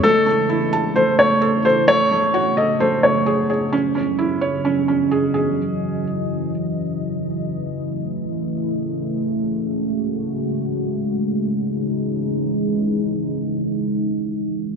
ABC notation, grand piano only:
X:1
M:4/4
L:1/8
Q:1/4=130
K:C#m
V:1 name="Grand piano"
A4 ^B c2 B | c3 d ^B c3 | z8 | z8 |
z8 | z8 | z8 | z8 |]